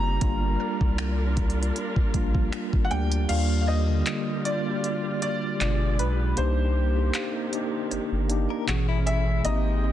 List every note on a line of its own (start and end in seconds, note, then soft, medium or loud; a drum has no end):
0.00 0.19 F#1 medium
0.00 0.20 G3 medium
0.00 3.25 G3 medium
0.00 0.22 A#3 medium
0.00 0.19 C4 medium
0.00 0.23 C4 medium
0.00 0.23 E4 medium
0.00 0.23 F4 medium
0.00 2.10 A#5 loud
0.20 0.57 G1 loud
0.20 1.44 G3 loud
0.20 1.45 A#3 medium
0.20 3.26 D4 medium
0.20 1.46 D4 medium
0.20 3.26 F4 medium
0.20 1.46 F4 loud
0.20 3.26 A#4 medium
0.20 kick loud
0.20 closed hi-hat medium
0.60 3.33 A#4 medium
0.81 1.72 C2 medium
0.81 kick loud
0.98 finger snap loud
0.98 closed hi-hat medium
1.37 kick loud
1.37 closed hi-hat soft
1.50 closed hi-hat medium
1.63 closed hi-hat medium
1.76 closed hi-hat medium
1.96 kick medium
2.13 2.49 A#1 medium
2.13 2.76 G3 medium
2.13 2.77 A#3 medium
2.13 2.77 D4 medium
2.13 2.78 F4 loud
2.13 kick medium
2.13 closed hi-hat medium
2.35 kick loud
2.52 finger snap loud
2.52 closed hi-hat medium
2.73 2.90 G#1 medium
2.73 kick medium
2.85 2.91 F#5 medium
2.90 3.26 D2 medium
2.90 3.22 G3 medium
2.90 3.22 A#3 medium
2.90 3.23 D4 medium
2.90 3.23 G4 medium
2.90 3.30 G5 loud
2.90 closed hi-hat soft
3.12 closed hi-hat medium
3.28 4.03 D#2 loud
3.28 5.58 D3 medium
3.28 3.75 G3 loud
3.28 3.76 A#3 medium
3.28 5.58 A#3 medium
3.28 3.77 D4 medium
3.28 6.34 F4 medium
3.28 3.77 F4 loud
3.28 5.58 G4 medium
3.28 3.60 F5 loud
3.28 closed hi-hat medium
3.28 crash loud
3.61 3.68 F5 medium
3.67 5.94 C5 medium
3.67 4.47 D#5 loud
3.88 4.35 D3 medium
3.88 4.34 G3 medium
3.88 4.34 A#3 medium
3.88 4.35 G4 medium
4.06 clap loud
4.06 closed hi-hat medium
4.44 4.61 G3 medium
4.44 4.61 A#3 medium
4.44 4.62 D4 medium
4.44 4.63 F4 medium
4.44 5.21 D5 medium
4.44 closed hi-hat medium
4.64 5.60 G3 medium
4.64 5.60 A#3 medium
4.64 5.60 D4 medium
4.64 4.73 F#4 medium
4.75 5.65 G4 medium
4.84 closed hi-hat medium
5.22 5.95 D5 loud
5.22 closed hi-hat medium
5.59 6.01 G1 loud
5.59 6.23 B2 medium
5.59 6.22 G#3 medium
5.59 6.23 D4 medium
5.59 6.24 F4 medium
5.59 8.65 G4 medium
5.59 6.36 G#4 medium
5.59 6.36 D5 medium
5.59 6.72 D5 medium
5.59 clap loud
5.59 closed hi-hat medium
5.99 6.34 B1 medium
5.99 6.35 B4 medium
5.99 closed hi-hat medium
6.36 7.10 C2 loud
6.36 8.66 C3 medium
6.36 8.66 D#3 medium
6.36 6.83 A#3 medium
6.36 8.66 A#3 medium
6.36 6.84 D4 medium
6.36 6.84 D#4 medium
6.36 6.85 G4 loud
6.36 7.87 C5 medium
6.36 closed hi-hat medium
6.95 7.41 A#3 medium
6.95 7.42 D4 medium
6.95 7.42 D#4 medium
6.95 7.43 G4 medium
7.14 9.02 F5 medium
7.14 clap loud
7.14 closed hi-hat medium
7.51 8.15 A#3 medium
7.51 8.15 D4 medium
7.51 8.16 D#4 medium
7.51 8.16 G4 loud
7.51 closed hi-hat medium
7.91 8.00 G1 soft
7.91 9.02 C5 medium
7.91 closed hi-hat medium
8.12 8.47 G1 medium
8.28 8.67 A#3 medium
8.28 8.68 D4 medium
8.28 8.68 D#4 medium
8.28 8.69 G4 loud
8.28 closed hi-hat medium
8.50 8.67 A#4 medium
8.66 9.41 A1 loud
8.66 9.30 B2 medium
8.66 9.31 E3 medium
8.66 9.92 G#3 medium
8.66 9.44 A3 medium
8.66 9.31 C#4 medium
8.66 9.44 C#4 medium
8.66 8.88 F#4 medium
8.66 9.32 G#4 loud
8.66 clap loud
8.66 closed hi-hat medium
8.89 9.42 E4 medium
9.06 9.46 E5 loud
9.06 closed hi-hat medium
9.44 9.92 G#1 loud
9.44 9.91 A#3 medium
9.44 9.91 C4 medium
9.44 9.92 C4 medium
9.44 9.92 D#4 medium
9.44 9.92 G4 loud
9.44 9.92 D#5 loud
9.44 9.92 G5 medium
9.44 9.92 A#5 medium
9.44 closed hi-hat medium